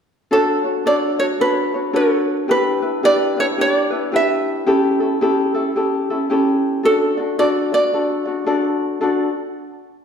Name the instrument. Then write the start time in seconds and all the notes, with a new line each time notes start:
ukulele
0.31 D4 F#4 A4 C#5
0.64 D4 F#4 C#5
0.86 D4 F#4 A4 C#5 D5
1.19 D4 F#4 C#5
1.40 D4 F#4 A4 B4 C#5
1.74 D4 F#4 C#5
1.93 D4 F#4 A4 C#5
2.48 D4 E4 G4 B4
2.82 D4 E4 B4
3.03 D4 E4 G4 B4 D5
3.37 D4 E4 B4 C#5
3.58 D4 E4 G4 B4 D5
3.90 D4 E4 B4
4.12 D4 E4 G4 B4 E5
4.67 C#4 E4 G4 A4
5.00 C#4 E4 A4
5.21 C#4 E4 G4 A4
5.54 C#4 E4 A4
5.76 C#4 E4 G4 A4
6.10 C#4 E4 A4
6.30 C#4 E4 G4 A4
6.83 D4 F#4 A4 D5
7.17 D4 F#4 D5
7.39 D4 F#4 A4 D5
7.72 D4 F#4 D5
7.94 D4 F#4 A4 D5
8.25 D4 F#4 D5
8.46 D4 F#4 A4 D5
9.01 D4 F#4 A4 D5